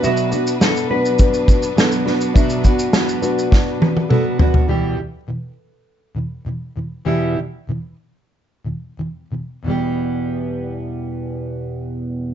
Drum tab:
SH |xxxxxx-xxxxxxx-x|xxxxxxxx--------|----------------|----------------|
SD |----o-------o-o-|----o---o-------|----------------|----------------|
T1 |----------------|----------oo----|----------------|----------------|
T2 |----------------|------------o---|----------------|----------------|
FT |----------------|--------------oo|----------------|----------------|
BD |--------o-o-----|o-o-----o-------|----------------|----------------|

SH |----------------|
SD |----------------|
T1 |----------------|
T2 |----------------|
FT |----------------|
BD |----------------|